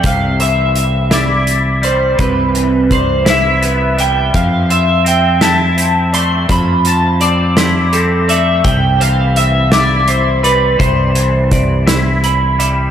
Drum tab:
HH |xxxxxx|xxxxxx|xxxxxx|xxxxxx|
SD |---o--|---o--|---o--|---o--|
BD |o-----|o-o---|o-----|o-----|

HH |xxxxxx|xxxxxx|
SD |---o--|---o--|
BD |o-----|o-o---|